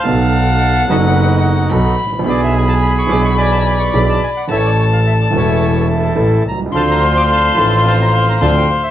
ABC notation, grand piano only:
X:1
M:4/4
L:1/16
Q:1/4=108
K:Aphr
V:1 name="Grand piano" clef=bass
[=B,,,=B,,^F,=B,^DA]6 [^F,,,^F,,F,B,DA]6 [B,,,B,,F,B,DA]2 z/2 ^G,,,/2 A,,,/2 _B,,,/2 | [=B,,,=B,,E,=B,D^G]6 [B,,,B,,E,B,DG]6 [B,,,B,,E,B,DG]2 z2 | [A,,,A,,E,A,^CA]6 [E,,,E,,E,A,CA]6 [A,,,A,,E,A,CA]2 z/2 =B,,,/2 =C,,/2 ^C,,/2 | [D,,D,F,CDA]6 [A,,,A,,F,CDA]6 [D,,D,F,CDA]2 z2 |]